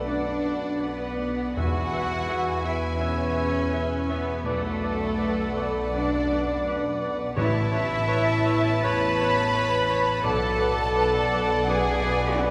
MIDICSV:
0, 0, Header, 1, 12, 480
1, 0, Start_track
1, 0, Tempo, 750000
1, 1007, Time_signature, 4, 2, 24, 8
1, 1007, Tempo, 722892
1, 3407, Tempo, 756620
1, 3887, Tempo, 709220
1, 5327, Tempo, 762389
1, 5807, Tempo, 714286
1, 8274, End_track
2, 0, Start_track
2, 0, Title_t, "Violin section"
2, 0, Program_c, 0, 48
2, 0, Note_on_c, 0, 78, 79
2, 981, Note_off_c, 0, 78, 0
2, 1004, Note_on_c, 0, 80, 81
2, 2927, Note_off_c, 0, 80, 0
2, 2930, Note_on_c, 0, 78, 81
2, 4848, Note_on_c, 0, 81, 106
2, 4851, Note_off_c, 0, 78, 0
2, 6730, Note_off_c, 0, 81, 0
2, 6764, Note_on_c, 0, 78, 102
2, 8274, Note_off_c, 0, 78, 0
2, 8274, End_track
3, 0, Start_track
3, 0, Title_t, "Cor anglais"
3, 0, Program_c, 1, 69
3, 44, Note_on_c, 1, 74, 64
3, 147, Note_off_c, 1, 74, 0
3, 281, Note_on_c, 1, 74, 59
3, 384, Note_off_c, 1, 74, 0
3, 511, Note_on_c, 1, 74, 61
3, 614, Note_off_c, 1, 74, 0
3, 760, Note_on_c, 1, 74, 64
3, 862, Note_off_c, 1, 74, 0
3, 1004, Note_on_c, 1, 76, 66
3, 1110, Note_off_c, 1, 76, 0
3, 1239, Note_on_c, 1, 76, 70
3, 1345, Note_off_c, 1, 76, 0
3, 1481, Note_on_c, 1, 76, 75
3, 1587, Note_off_c, 1, 76, 0
3, 1719, Note_on_c, 1, 76, 69
3, 1825, Note_off_c, 1, 76, 0
3, 1953, Note_on_c, 1, 76, 74
3, 2059, Note_off_c, 1, 76, 0
3, 2197, Note_on_c, 1, 76, 62
3, 2304, Note_off_c, 1, 76, 0
3, 2439, Note_on_c, 1, 76, 69
3, 2545, Note_off_c, 1, 76, 0
3, 2683, Note_on_c, 1, 76, 74
3, 2789, Note_off_c, 1, 76, 0
3, 2920, Note_on_c, 1, 74, 81
3, 3026, Note_off_c, 1, 74, 0
3, 3169, Note_on_c, 1, 74, 67
3, 3276, Note_off_c, 1, 74, 0
3, 3406, Note_on_c, 1, 74, 85
3, 3508, Note_off_c, 1, 74, 0
3, 3648, Note_on_c, 1, 74, 80
3, 3750, Note_off_c, 1, 74, 0
3, 3893, Note_on_c, 1, 74, 75
3, 4001, Note_off_c, 1, 74, 0
3, 4132, Note_on_c, 1, 74, 71
3, 4241, Note_off_c, 1, 74, 0
3, 4372, Note_on_c, 1, 74, 78
3, 4480, Note_off_c, 1, 74, 0
3, 4613, Note_on_c, 1, 74, 86
3, 4720, Note_off_c, 1, 74, 0
3, 4844, Note_on_c, 1, 73, 87
3, 4952, Note_off_c, 1, 73, 0
3, 5085, Note_on_c, 1, 73, 79
3, 5193, Note_off_c, 1, 73, 0
3, 5330, Note_on_c, 1, 73, 98
3, 5431, Note_off_c, 1, 73, 0
3, 5567, Note_on_c, 1, 73, 85
3, 5667, Note_off_c, 1, 73, 0
3, 5807, Note_on_c, 1, 73, 95
3, 5914, Note_off_c, 1, 73, 0
3, 6053, Note_on_c, 1, 73, 80
3, 6159, Note_off_c, 1, 73, 0
3, 6290, Note_on_c, 1, 73, 78
3, 6394, Note_off_c, 1, 73, 0
3, 6520, Note_on_c, 1, 73, 88
3, 6626, Note_off_c, 1, 73, 0
3, 6749, Note_on_c, 1, 74, 102
3, 6856, Note_off_c, 1, 74, 0
3, 6986, Note_on_c, 1, 74, 89
3, 7093, Note_off_c, 1, 74, 0
3, 7226, Note_on_c, 1, 74, 91
3, 7333, Note_off_c, 1, 74, 0
3, 7478, Note_on_c, 1, 74, 94
3, 7586, Note_off_c, 1, 74, 0
3, 7728, Note_on_c, 1, 74, 94
3, 7834, Note_off_c, 1, 74, 0
3, 7961, Note_on_c, 1, 74, 83
3, 8068, Note_off_c, 1, 74, 0
3, 8200, Note_on_c, 1, 74, 85
3, 8274, Note_off_c, 1, 74, 0
3, 8274, End_track
4, 0, Start_track
4, 0, Title_t, "Flute"
4, 0, Program_c, 2, 73
4, 49, Note_on_c, 2, 74, 82
4, 513, Note_on_c, 2, 71, 83
4, 522, Note_off_c, 2, 74, 0
4, 835, Note_off_c, 2, 71, 0
4, 1007, Note_on_c, 2, 78, 106
4, 1698, Note_off_c, 2, 78, 0
4, 1715, Note_on_c, 2, 76, 79
4, 1957, Note_on_c, 2, 73, 84
4, 1967, Note_off_c, 2, 76, 0
4, 2679, Note_on_c, 2, 71, 94
4, 2689, Note_off_c, 2, 73, 0
4, 2920, Note_off_c, 2, 71, 0
4, 2924, Note_on_c, 2, 69, 105
4, 3886, Note_on_c, 2, 74, 80
4, 3896, Note_off_c, 2, 69, 0
4, 4373, Note_off_c, 2, 74, 0
4, 4848, Note_on_c, 2, 76, 127
4, 5812, Note_on_c, 2, 83, 127
4, 5822, Note_off_c, 2, 76, 0
4, 6757, Note_on_c, 2, 81, 127
4, 6768, Note_off_c, 2, 83, 0
4, 7535, Note_off_c, 2, 81, 0
4, 7728, Note_on_c, 2, 80, 114
4, 8207, Note_on_c, 2, 71, 116
4, 8217, Note_off_c, 2, 80, 0
4, 8274, Note_off_c, 2, 71, 0
4, 8274, End_track
5, 0, Start_track
5, 0, Title_t, "Violin section"
5, 0, Program_c, 3, 48
5, 48, Note_on_c, 3, 74, 96
5, 510, Note_off_c, 3, 74, 0
5, 513, Note_on_c, 3, 71, 90
5, 1004, Note_off_c, 3, 71, 0
5, 1004, Note_on_c, 3, 78, 127
5, 1721, Note_on_c, 3, 76, 91
5, 1724, Note_off_c, 3, 78, 0
5, 1963, Note_off_c, 3, 76, 0
5, 1965, Note_on_c, 3, 73, 100
5, 2686, Note_on_c, 3, 71, 93
5, 2687, Note_off_c, 3, 73, 0
5, 2924, Note_off_c, 3, 71, 0
5, 2935, Note_on_c, 3, 69, 113
5, 3891, Note_off_c, 3, 69, 0
5, 3892, Note_on_c, 3, 74, 108
5, 4376, Note_off_c, 3, 74, 0
5, 4852, Note_on_c, 3, 76, 127
5, 5784, Note_off_c, 3, 76, 0
5, 5809, Note_on_c, 3, 83, 127
5, 6759, Note_off_c, 3, 83, 0
5, 6763, Note_on_c, 3, 81, 127
5, 7706, Note_off_c, 3, 81, 0
5, 7726, Note_on_c, 3, 80, 127
5, 8206, Note_off_c, 3, 80, 0
5, 8211, Note_on_c, 3, 71, 127
5, 8274, Note_off_c, 3, 71, 0
5, 8274, End_track
6, 0, Start_track
6, 0, Title_t, "Viola section"
6, 0, Program_c, 4, 48
6, 0, Note_on_c, 4, 71, 74
6, 0, Note_on_c, 4, 74, 74
6, 978, Note_off_c, 4, 71, 0
6, 1006, Note_on_c, 4, 71, 78
6, 1007, Note_on_c, 4, 76, 78
6, 1008, Note_off_c, 4, 74, 0
6, 2929, Note_off_c, 4, 76, 0
6, 2933, Note_on_c, 4, 74, 83
6, 4822, Note_off_c, 4, 71, 0
6, 4825, Note_off_c, 4, 74, 0
6, 4853, Note_on_c, 4, 73, 92
6, 4855, Note_on_c, 4, 71, 97
6, 6733, Note_off_c, 4, 73, 0
6, 6763, Note_on_c, 4, 74, 102
6, 8274, Note_off_c, 4, 71, 0
6, 8274, Note_off_c, 4, 74, 0
6, 8274, End_track
7, 0, Start_track
7, 0, Title_t, "Clarinet"
7, 0, Program_c, 5, 71
7, 50, Note_on_c, 5, 71, 69
7, 153, Note_off_c, 5, 71, 0
7, 287, Note_on_c, 5, 71, 64
7, 389, Note_off_c, 5, 71, 0
7, 509, Note_on_c, 5, 71, 72
7, 612, Note_off_c, 5, 71, 0
7, 759, Note_on_c, 5, 71, 57
7, 861, Note_off_c, 5, 71, 0
7, 1009, Note_on_c, 5, 71, 74
7, 1115, Note_off_c, 5, 71, 0
7, 1250, Note_on_c, 5, 71, 71
7, 1356, Note_off_c, 5, 71, 0
7, 1480, Note_on_c, 5, 71, 65
7, 1586, Note_off_c, 5, 71, 0
7, 1715, Note_on_c, 5, 71, 74
7, 1822, Note_off_c, 5, 71, 0
7, 1952, Note_on_c, 5, 71, 79
7, 2058, Note_off_c, 5, 71, 0
7, 2180, Note_on_c, 5, 71, 64
7, 2286, Note_off_c, 5, 71, 0
7, 2438, Note_on_c, 5, 71, 83
7, 2544, Note_off_c, 5, 71, 0
7, 2684, Note_on_c, 5, 71, 68
7, 2790, Note_off_c, 5, 71, 0
7, 2930, Note_on_c, 5, 71, 83
7, 3036, Note_off_c, 5, 71, 0
7, 3169, Note_on_c, 5, 71, 65
7, 3275, Note_off_c, 5, 71, 0
7, 3403, Note_on_c, 5, 71, 85
7, 3505, Note_off_c, 5, 71, 0
7, 3643, Note_on_c, 5, 71, 68
7, 3744, Note_off_c, 5, 71, 0
7, 3893, Note_on_c, 5, 71, 78
7, 4002, Note_off_c, 5, 71, 0
7, 4141, Note_on_c, 5, 71, 75
7, 4248, Note_off_c, 5, 71, 0
7, 4386, Note_on_c, 5, 71, 87
7, 4491, Note_off_c, 5, 71, 0
7, 4626, Note_on_c, 5, 71, 69
7, 4730, Note_off_c, 5, 71, 0
7, 4855, Note_on_c, 5, 71, 89
7, 4961, Note_off_c, 5, 71, 0
7, 5097, Note_on_c, 5, 71, 77
7, 5203, Note_off_c, 5, 71, 0
7, 5331, Note_on_c, 5, 71, 89
7, 5432, Note_off_c, 5, 71, 0
7, 5564, Note_on_c, 5, 71, 81
7, 5665, Note_off_c, 5, 71, 0
7, 5807, Note_on_c, 5, 71, 103
7, 5915, Note_off_c, 5, 71, 0
7, 6060, Note_on_c, 5, 71, 89
7, 6164, Note_off_c, 5, 71, 0
7, 6293, Note_on_c, 5, 71, 99
7, 6397, Note_off_c, 5, 71, 0
7, 6528, Note_on_c, 5, 71, 79
7, 6633, Note_off_c, 5, 71, 0
7, 6764, Note_on_c, 5, 71, 98
7, 6871, Note_off_c, 5, 71, 0
7, 6996, Note_on_c, 5, 71, 85
7, 7104, Note_off_c, 5, 71, 0
7, 7247, Note_on_c, 5, 71, 96
7, 7355, Note_off_c, 5, 71, 0
7, 7499, Note_on_c, 5, 71, 88
7, 7603, Note_off_c, 5, 71, 0
7, 7725, Note_on_c, 5, 71, 104
7, 7831, Note_off_c, 5, 71, 0
7, 7958, Note_on_c, 5, 71, 90
7, 8065, Note_off_c, 5, 71, 0
7, 8205, Note_on_c, 5, 71, 93
7, 8274, Note_off_c, 5, 71, 0
7, 8274, End_track
8, 0, Start_track
8, 0, Title_t, "French horn section"
8, 0, Program_c, 6, 60
8, 0, Note_on_c, 6, 71, 89
8, 0, Note_on_c, 6, 74, 96
8, 987, Note_off_c, 6, 74, 0
8, 989, Note_off_c, 6, 71, 0
8, 1001, Note_on_c, 6, 71, 101
8, 1002, Note_on_c, 6, 68, 94
8, 2811, Note_off_c, 6, 68, 0
8, 2811, Note_off_c, 6, 71, 0
8, 2923, Note_on_c, 6, 74, 104
8, 2930, Note_on_c, 6, 71, 110
8, 4820, Note_off_c, 6, 74, 0
8, 4861, Note_on_c, 6, 73, 121
8, 6732, Note_off_c, 6, 71, 0
8, 6737, Note_off_c, 6, 73, 0
8, 6764, Note_on_c, 6, 71, 117
8, 6767, Note_on_c, 6, 74, 127
8, 8274, Note_off_c, 6, 71, 0
8, 8274, Note_off_c, 6, 74, 0
8, 8274, End_track
9, 0, Start_track
9, 0, Title_t, "Cello section"
9, 0, Program_c, 7, 48
9, 49, Note_on_c, 7, 62, 104
9, 520, Note_off_c, 7, 62, 0
9, 520, Note_on_c, 7, 59, 100
9, 1003, Note_on_c, 7, 66, 112
9, 1007, Note_off_c, 7, 59, 0
9, 1708, Note_off_c, 7, 66, 0
9, 1720, Note_on_c, 7, 64, 97
9, 1962, Note_off_c, 7, 64, 0
9, 1963, Note_on_c, 7, 61, 118
9, 2686, Note_off_c, 7, 61, 0
9, 2687, Note_on_c, 7, 59, 115
9, 2922, Note_on_c, 7, 57, 127
9, 2929, Note_off_c, 7, 59, 0
9, 3866, Note_off_c, 7, 57, 0
9, 3890, Note_on_c, 7, 62, 117
9, 4365, Note_off_c, 7, 62, 0
9, 4847, Note_on_c, 7, 64, 127
9, 5781, Note_off_c, 7, 64, 0
9, 5812, Note_on_c, 7, 71, 127
9, 6760, Note_off_c, 7, 71, 0
9, 6762, Note_on_c, 7, 69, 127
9, 7706, Note_off_c, 7, 69, 0
9, 7725, Note_on_c, 7, 68, 127
9, 8206, Note_off_c, 7, 68, 0
9, 8210, Note_on_c, 7, 59, 127
9, 8274, Note_off_c, 7, 59, 0
9, 8274, End_track
10, 0, Start_track
10, 0, Title_t, "Grand piano"
10, 0, Program_c, 8, 0
10, 0, Control_c, 8, 64, 127
10, 0, Note_on_c, 8, 35, 67
10, 0, Note_on_c, 8, 59, 46
10, 0, Note_on_c, 8, 71, 59
10, 50, Note_on_c, 8, 42, 57
10, 193, Note_off_c, 8, 59, 0
10, 283, Note_on_c, 8, 59, 59
10, 426, Note_off_c, 8, 42, 0
10, 519, Note_off_c, 8, 71, 0
10, 519, Note_on_c, 8, 71, 49
10, 663, Note_off_c, 8, 59, 0
10, 755, Note_on_c, 8, 59, 67
10, 911, Note_off_c, 8, 71, 0
10, 1003, Note_off_c, 8, 59, 0
10, 1003, Note_on_c, 8, 40, 62
10, 1019, Control_c, 8, 64, 0
10, 1023, Note_off_c, 8, 35, 0
10, 1139, Control_c, 8, 64, 127
10, 1238, Note_on_c, 8, 59, 65
10, 1480, Note_on_c, 8, 68, 65
10, 1624, Note_off_c, 8, 59, 0
10, 1717, Note_on_c, 8, 59, 63
10, 1867, Note_off_c, 8, 68, 0
10, 1936, Note_off_c, 8, 40, 0
10, 1949, Note_on_c, 8, 47, 62
10, 2103, Note_off_c, 8, 59, 0
10, 2192, Note_on_c, 8, 59, 61
10, 2339, Note_off_c, 8, 47, 0
10, 2434, Note_on_c, 8, 68, 63
10, 2584, Note_off_c, 8, 59, 0
10, 2676, Note_on_c, 8, 59, 72
10, 2827, Note_off_c, 8, 68, 0
10, 2921, Note_on_c, 8, 35, 77
10, 2924, Note_off_c, 8, 59, 0
10, 2942, Control_c, 8, 64, 0
10, 3048, Control_c, 8, 64, 127
10, 3161, Note_on_c, 8, 59, 71
10, 3404, Note_on_c, 8, 71, 62
10, 3545, Note_off_c, 8, 59, 0
10, 3647, Note_on_c, 8, 59, 64
10, 3791, Note_off_c, 8, 71, 0
10, 3859, Note_off_c, 8, 35, 0
10, 3890, Note_on_c, 8, 42, 74
10, 4038, Note_off_c, 8, 59, 0
10, 4137, Note_on_c, 8, 59, 61
10, 4279, Note_off_c, 8, 42, 0
10, 4372, Note_on_c, 8, 71, 71
10, 4518, Note_off_c, 8, 59, 0
10, 4612, Note_on_c, 8, 59, 76
10, 4754, Note_off_c, 8, 71, 0
10, 4849, Note_on_c, 8, 33, 81
10, 4850, Note_off_c, 8, 59, 0
10, 4862, Control_c, 8, 64, 0
10, 4950, Control_c, 8, 64, 127
10, 5083, Note_on_c, 8, 59, 75
10, 5320, Note_on_c, 8, 71, 72
10, 5465, Note_off_c, 8, 59, 0
10, 5562, Note_on_c, 8, 59, 78
10, 5708, Note_off_c, 8, 71, 0
10, 5782, Note_off_c, 8, 33, 0
10, 5810, Note_on_c, 8, 40, 78
10, 5956, Note_off_c, 8, 59, 0
10, 6061, Note_on_c, 8, 59, 83
10, 6197, Note_off_c, 8, 40, 0
10, 6289, Note_on_c, 8, 71, 75
10, 6432, Note_off_c, 8, 59, 0
10, 6521, Note_on_c, 8, 59, 76
10, 6663, Note_off_c, 8, 71, 0
10, 6754, Note_on_c, 8, 35, 93
10, 6758, Note_off_c, 8, 59, 0
10, 6771, Control_c, 8, 64, 0
10, 6882, Control_c, 8, 64, 127
10, 6996, Note_on_c, 8, 59, 82
10, 7234, Note_on_c, 8, 71, 87
10, 7387, Note_off_c, 8, 59, 0
10, 7475, Note_on_c, 8, 59, 66
10, 7625, Note_off_c, 8, 71, 0
10, 7694, Note_off_c, 8, 35, 0
10, 7716, Note_on_c, 8, 42, 74
10, 7861, Note_off_c, 8, 59, 0
10, 7953, Note_on_c, 8, 59, 73
10, 8102, Note_off_c, 8, 42, 0
10, 8203, Note_on_c, 8, 71, 78
10, 8274, Note_off_c, 8, 59, 0
10, 8274, Note_off_c, 8, 71, 0
10, 8274, End_track
11, 0, Start_track
11, 0, Title_t, "Timpani"
11, 0, Program_c, 10, 47
11, 1003, Note_on_c, 10, 40, 103
11, 1696, Note_off_c, 10, 40, 0
11, 4853, Note_on_c, 10, 45, 111
11, 5541, Note_off_c, 10, 45, 0
11, 8274, End_track
12, 0, Start_track
12, 0, Title_t, "Double bass section"
12, 0, Program_c, 11, 48
12, 0, Note_on_c, 11, 35, 83
12, 982, Note_off_c, 11, 35, 0
12, 1009, Note_on_c, 11, 40, 89
12, 2903, Note_off_c, 11, 40, 0
12, 2930, Note_on_c, 11, 35, 94
12, 4851, Note_off_c, 11, 35, 0
12, 4852, Note_on_c, 11, 33, 101
12, 6732, Note_off_c, 11, 33, 0
12, 6768, Note_on_c, 11, 35, 117
12, 8274, Note_off_c, 11, 35, 0
12, 8274, End_track
0, 0, End_of_file